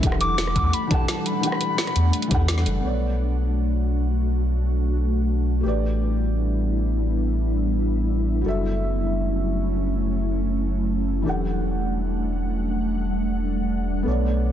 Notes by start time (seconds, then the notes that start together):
0.00 E1 E3 G3 A3 D4 G4 F#5, kick, closed hi-hat
0.05 A4 F#5
0.12 cross-stick
0.21 D6, closed hi-hat
0.38 snare, closed hi-hat
0.47 cross-stick
0.56 E2, kick, closed hi-hat
0.73 B5, closed hi-hat
0.87 E3 D4 G4 A5, kick, closed hi-hat
0.92 A4 F#5
1.08 A5, snare, closed hi-hat
1.26 B5, closed hi-hat
1.40 E3 D4 G4, closed hi-hat
1.45 A4 F#5
1.52 cross-stick
1.61 closed hi-hat
1.78 snare, closed hi-hat
1.87 cross-stick, closed hi-hat
1.96 E2, closed hi-hat
2.13 closed hi-hat
2.22 closed hi-hat
2.28 E2 E3 D4 G4, kick, closed hi-hat
2.33 A4 F#5
2.48 snare, closed hi-hat
2.58 snare
2.66 F#1, closed hi-hat
2.80 B1 A3 B3 D4 F#4 A4
2.85 C#5 D5
5.61 A1 G3 A3 B3 E4 G4
5.65 B4 D5
8.41 F#1 F#3 A3 F#4
8.45 C#4 A4 E5
11.22 E1 E3 G3 D4 G4 F#5
11.27 A4 F#5
14.03 B1 B3 A4
14.08 C#5 D5